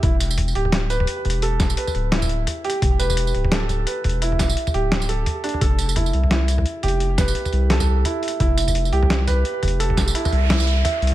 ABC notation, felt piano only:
X:1
M:4/4
L:1/8
Q:"Swing 16ths" 1/4=172
K:Flyd
V:1 name="Felt piano"
E z2 G2 B z2 | A2 B z E z2 G- | G B z2 A2 B z | E z2 G2 A z D |
A2 E z E z2 G- | G B z2 A2 E z | E z2 G2 B z2 | A2 E z E z e z |]